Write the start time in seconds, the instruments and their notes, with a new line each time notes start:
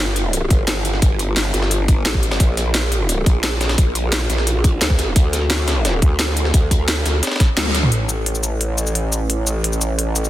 Already playing: wobble bass G1
0.16 closed hi-hat
0.33 closed hi-hat
0.50 wobble bass G1, kick, closed hi-hat
0.68 snare, closed hi-hat
0.85 closed hi-hat
0.94 snare
1.02 wobble bass G1, kick, closed hi-hat
1.19 closed hi-hat
1.37 snare, closed hi-hat
1.54 wobble bass G1, snare, closed hi-hat
1.62 snare
1.71 closed hi-hat
1.88 kick, closed hi-hat
2.05 wobble bass A1, snare, closed hi-hat
2.14 kick
2.23 closed hi-hat
2.31 snare, closed hi-hat
2.40 wobble bass A#1, kick, closed hi-hat
2.57 snare, closed hi-hat
2.75 snare, closed hi-hat
2.92 closed hi-hat
3.09 closed hi-hat
3.26 wobble bass A#1, kick, closed hi-hat
3.44 snare, closed hi-hat
3.61 snare, closed hi-hat
3.69 snare, closed hi-hat
3.78 wobble bass A#1, kick, closed hi-hat
3.95 closed hi-hat
4.12 snare, closed hi-hat
4.30 wobble bass A#1, snare, closed hi-hat
4.38 snare
4.47 closed hi-hat
4.64 kick, closed hi-hat
4.81 wobble bass D2, snare, closed hi-hat
4.90 kick
4.99 snare, closed hi-hat
5.16 wobble bass D2, kick, closed hi-hat
5.33 snare, closed hi-hat
5.50 snare, closed hi-hat
5.68 snare, closed hi-hat
5.85 snare, closed hi-hat
6.02 wobble bass D2, kick, closed hi-hat
6.19 snare, closed hi-hat
6.37 closed hi-hat
6.45 snare
6.54 wobble bass D2, kick, closed hi-hat
6.71 kick, closed hi-hat
6.88 snare, closed hi-hat
7.06 wobble bass D2, snare, closed hi-hat
7.23 snare, closed hi-hat
7.27 snare, closed hi-hat
7.32 snare, closed hi-hat
7.36 snare, closed hi-hat
7.40 kick, snare, closed hi-hat
7.57 wobble bass D2, snare, closed hi-hat, high tom
7.66 high tom
7.75 snare, closed hi-hat
7.83 mid tom
7.92 wobble bass A1, closed hi-hat
8.09 closed hi-hat, cabasa
8.26 closed hi-hat
8.35 cabasa
8.43 closed hi-hat, cabasa
8.61 closed hi-hat
8.78 closed hi-hat, cabasa
8.87 cabasa
8.95 closed hi-hat
9.13 closed hi-hat, cabasa
9.30 closed hi-hat
9.47 closed hi-hat, cabasa
9.64 closed hi-hat
9.73 cabasa
9.81 closed hi-hat, cabasa
9.99 closed hi-hat
10.16 closed hi-hat, cabasa
10.24 cabasa